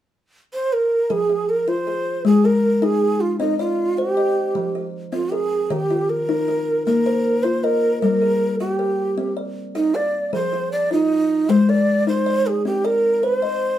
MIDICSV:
0, 0, Header, 1, 3, 480
1, 0, Start_track
1, 0, Tempo, 384862
1, 1374, Time_signature, 12, 3, 24, 8
1, 17194, End_track
2, 0, Start_track
2, 0, Title_t, "Native American-style wooden flute"
2, 0, Program_c, 0, 77
2, 671, Note_on_c, 0, 72, 89
2, 908, Note_on_c, 0, 70, 86
2, 927, Note_off_c, 0, 72, 0
2, 1380, Note_on_c, 0, 68, 84
2, 1398, Note_off_c, 0, 70, 0
2, 1861, Note_on_c, 0, 70, 80
2, 1880, Note_off_c, 0, 68, 0
2, 2099, Note_on_c, 0, 72, 88
2, 2117, Note_off_c, 0, 70, 0
2, 2812, Note_off_c, 0, 72, 0
2, 2817, Note_on_c, 0, 68, 97
2, 3057, Note_on_c, 0, 70, 88
2, 3076, Note_off_c, 0, 68, 0
2, 3529, Note_on_c, 0, 68, 91
2, 3548, Note_off_c, 0, 70, 0
2, 3998, Note_on_c, 0, 65, 85
2, 4016, Note_off_c, 0, 68, 0
2, 4229, Note_off_c, 0, 65, 0
2, 4237, Note_on_c, 0, 63, 81
2, 4463, Note_off_c, 0, 63, 0
2, 4483, Note_on_c, 0, 65, 82
2, 4962, Note_on_c, 0, 66, 90
2, 4981, Note_off_c, 0, 65, 0
2, 5100, Note_off_c, 0, 66, 0
2, 5100, Note_on_c, 0, 67, 90
2, 6060, Note_off_c, 0, 67, 0
2, 6407, Note_on_c, 0, 65, 74
2, 6643, Note_on_c, 0, 68, 82
2, 6662, Note_off_c, 0, 65, 0
2, 7126, Note_on_c, 0, 67, 82
2, 7145, Note_off_c, 0, 68, 0
2, 7602, Note_on_c, 0, 70, 92
2, 7621, Note_off_c, 0, 67, 0
2, 8554, Note_off_c, 0, 70, 0
2, 8562, Note_on_c, 0, 70, 97
2, 9269, Note_on_c, 0, 72, 86
2, 9287, Note_off_c, 0, 70, 0
2, 9524, Note_on_c, 0, 70, 79
2, 9543, Note_off_c, 0, 72, 0
2, 10001, Note_off_c, 0, 70, 0
2, 10008, Note_on_c, 0, 70, 84
2, 10674, Note_off_c, 0, 70, 0
2, 10725, Note_on_c, 0, 67, 78
2, 11634, Note_off_c, 0, 67, 0
2, 12175, Note_on_c, 0, 63, 87
2, 12409, Note_on_c, 0, 74, 83
2, 12428, Note_off_c, 0, 63, 0
2, 12887, Note_off_c, 0, 74, 0
2, 12895, Note_on_c, 0, 72, 92
2, 13337, Note_off_c, 0, 72, 0
2, 13373, Note_on_c, 0, 74, 83
2, 13593, Note_off_c, 0, 74, 0
2, 13625, Note_on_c, 0, 63, 92
2, 14340, Note_on_c, 0, 72, 97
2, 14359, Note_off_c, 0, 63, 0
2, 14587, Note_on_c, 0, 74, 94
2, 14605, Note_off_c, 0, 72, 0
2, 15060, Note_off_c, 0, 74, 0
2, 15069, Note_on_c, 0, 72, 92
2, 15548, Note_on_c, 0, 68, 79
2, 15567, Note_off_c, 0, 72, 0
2, 15783, Note_off_c, 0, 68, 0
2, 15791, Note_on_c, 0, 67, 78
2, 16027, Note_on_c, 0, 70, 91
2, 16046, Note_off_c, 0, 67, 0
2, 16505, Note_on_c, 0, 71, 99
2, 16524, Note_off_c, 0, 70, 0
2, 16655, Note_off_c, 0, 71, 0
2, 16655, Note_on_c, 0, 72, 99
2, 17194, Note_off_c, 0, 72, 0
2, 17194, End_track
3, 0, Start_track
3, 0, Title_t, "Kalimba"
3, 0, Program_c, 1, 108
3, 1372, Note_on_c, 1, 68, 60
3, 1374, Note_on_c, 1, 53, 72
3, 1615, Note_on_c, 1, 67, 56
3, 1852, Note_off_c, 1, 53, 0
3, 2090, Note_off_c, 1, 68, 0
3, 2091, Note_on_c, 1, 65, 67
3, 2331, Note_off_c, 1, 67, 0
3, 2332, Note_on_c, 1, 68, 57
3, 2570, Note_off_c, 1, 65, 0
3, 2803, Note_on_c, 1, 56, 75
3, 3046, Note_on_c, 1, 70, 56
3, 3049, Note_off_c, 1, 68, 0
3, 3284, Note_off_c, 1, 56, 0
3, 3519, Note_on_c, 1, 63, 78
3, 3765, Note_off_c, 1, 70, 0
3, 4001, Note_off_c, 1, 63, 0
3, 4236, Note_on_c, 1, 75, 65
3, 4238, Note_on_c, 1, 60, 77
3, 4482, Note_on_c, 1, 74, 59
3, 4720, Note_off_c, 1, 60, 0
3, 4958, Note_off_c, 1, 75, 0
3, 4968, Note_on_c, 1, 72, 64
3, 5201, Note_off_c, 1, 74, 0
3, 5201, Note_on_c, 1, 75, 58
3, 5444, Note_off_c, 1, 72, 0
3, 5677, Note_on_c, 1, 53, 74
3, 5920, Note_off_c, 1, 75, 0
3, 5926, Note_on_c, 1, 67, 56
3, 6158, Note_off_c, 1, 53, 0
3, 6393, Note_on_c, 1, 60, 76
3, 6636, Note_on_c, 1, 70, 59
3, 6642, Note_off_c, 1, 67, 0
3, 6875, Note_off_c, 1, 60, 0
3, 7113, Note_on_c, 1, 51, 75
3, 7115, Note_on_c, 1, 67, 68
3, 7356, Note_off_c, 1, 70, 0
3, 7364, Note_on_c, 1, 65, 60
3, 7595, Note_off_c, 1, 51, 0
3, 7836, Note_off_c, 1, 67, 0
3, 7843, Note_on_c, 1, 63, 76
3, 8081, Note_off_c, 1, 65, 0
3, 8083, Note_on_c, 1, 67, 58
3, 8320, Note_off_c, 1, 63, 0
3, 8567, Note_on_c, 1, 58, 79
3, 8800, Note_off_c, 1, 67, 0
3, 8808, Note_on_c, 1, 72, 64
3, 9042, Note_off_c, 1, 58, 0
3, 9284, Note_on_c, 1, 65, 69
3, 9523, Note_off_c, 1, 72, 0
3, 9526, Note_on_c, 1, 75, 62
3, 9761, Note_off_c, 1, 65, 0
3, 10007, Note_on_c, 1, 55, 76
3, 10007, Note_on_c, 1, 70, 67
3, 10242, Note_off_c, 1, 75, 0
3, 10248, Note_on_c, 1, 68, 58
3, 10483, Note_off_c, 1, 55, 0
3, 10723, Note_off_c, 1, 70, 0
3, 10732, Note_on_c, 1, 67, 70
3, 10964, Note_off_c, 1, 68, 0
3, 10964, Note_on_c, 1, 70, 57
3, 11206, Note_off_c, 1, 67, 0
3, 11444, Note_on_c, 1, 60, 75
3, 11682, Note_on_c, 1, 74, 53
3, 11683, Note_off_c, 1, 70, 0
3, 11923, Note_off_c, 1, 60, 0
3, 12163, Note_on_c, 1, 67, 71
3, 12398, Note_on_c, 1, 77, 55
3, 12403, Note_off_c, 1, 74, 0
3, 12643, Note_off_c, 1, 67, 0
3, 12881, Note_on_c, 1, 53, 72
3, 12884, Note_on_c, 1, 68, 69
3, 13122, Note_off_c, 1, 77, 0
3, 13127, Note_on_c, 1, 67, 54
3, 13364, Note_off_c, 1, 53, 0
3, 13606, Note_off_c, 1, 68, 0
3, 13606, Note_on_c, 1, 65, 66
3, 13848, Note_off_c, 1, 67, 0
3, 14088, Note_off_c, 1, 65, 0
3, 14331, Note_on_c, 1, 56, 70
3, 14576, Note_on_c, 1, 70, 60
3, 14812, Note_off_c, 1, 56, 0
3, 15054, Note_on_c, 1, 63, 70
3, 15295, Note_on_c, 1, 74, 60
3, 15296, Note_off_c, 1, 70, 0
3, 15535, Note_off_c, 1, 63, 0
3, 15780, Note_on_c, 1, 60, 74
3, 16005, Note_off_c, 1, 74, 0
3, 16020, Note_on_c, 1, 74, 60
3, 16260, Note_off_c, 1, 60, 0
3, 16503, Note_on_c, 1, 72, 68
3, 16742, Note_off_c, 1, 74, 0
3, 16742, Note_on_c, 1, 75, 59
3, 16984, Note_off_c, 1, 72, 0
3, 17194, Note_off_c, 1, 75, 0
3, 17194, End_track
0, 0, End_of_file